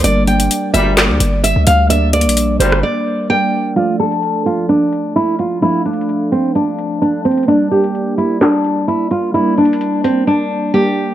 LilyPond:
<<
  \new Staff \with { instrumentName = "Nylon-string guitar" } { \time 4/4 \key d \minor \tempo 4 = 129 d''8 g''4 e''8 d''4 e''8 f''8 | e''8 d''4 c''8 d''4 g''4 | f'8 a'4 f'8 d'4 e'8 f'8 | e'8 d'4 c'8 d'4 d'8 c'8 |
d'8 g'4 e'8 d'4 e'8 f'8 | e'8 d'4 c'8 d'4 g'4 | }
  \new Staff \with { instrumentName = "Synth keys" } { \time 4/4 \key d \minor <g bes d' bes' d''>1 | <g bes d' bes' d''>2. <g bes d' bes' d''>4 | <f a d' a' d''>1 | <f a d' a' f''>1 |
<g bes d' bes' d''>1 | <g bes d' bes' d''>2. <g bes d' bes' d''>4 | }
  \new Staff \with { instrumentName = "Brass ensemble" } { \clef bass \time 4/4 \key d \minor r4. <d, bes, g>4 r4. | r4. <d, bes, g>8 r2 | r1 | r1 |
r1 | r1 | }
  \new Staff \with { instrumentName = "808-style bass" } { \clef bass \time 4/4 \key d \minor g,,4 r8 g,,8. d,16 g,,8. d,16 d,8~ | d,8. bes,,8. g,,8 r2 | r1 | r1 |
r1 | r1 | }
  \new DrumStaff \with { instrumentName = "Drums" } \drummode { \time 4/4 hh8 hh16 hh16 hh8 hh8 <hc hh sn>8 hh8 hh8 hh8 | \tuplet 3/2 { hh16 r16 r16 <hh hho>16 hh16 hh16 } hh8 hh16 ss16 r4 r4 | hh8 hh16 hh16 hh8 hh8 hh8 hh8 hh8 hh8 | \tuplet 3/2 { hh16 r16 r16 hh16 hh16 hh16 } hh8 hh8 hh8 hh8 hh8 hh32 hh32 hh32 hh32 |
hh8 hh16 hh16 hh8 hh8 <hc hh sn>8 hh8 hh8 hh8 | \tuplet 3/2 { hh16 r16 r16 hh16 hh16 hh16 } hh8 hh8 r4 r4 | }
>>